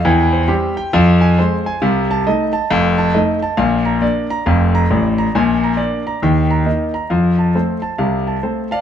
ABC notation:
X:1
M:4/4
L:1/8
Q:"Swing" 1/4=136
K:Fdor
V:1 name="Grand piano"
g c G g f a c a | [K:Bb] f a e a f a e a | f b d b f b d b | _a b d b g b e b |
f a c a f a c [dfa] |]
V:2 name="Grand piano" clef=bass
[=E,,=E,]2 [G,C]2 [F,,F,]2 [A,C]2 | [K:Bb] [C,,C,]2 [A,E]2 [F,,,F,,]2 [A,E]2 | [B,,,B,,]2 [B,D]2 [F,,,F,,]2 [A,,,A,,]2 | [B,,,B,,]2 [B,D]2 [E,,E,]2 [B,E]2 |
[F,,F,]2 [A,C]2 [C,,C,]2 [A,C]2 |]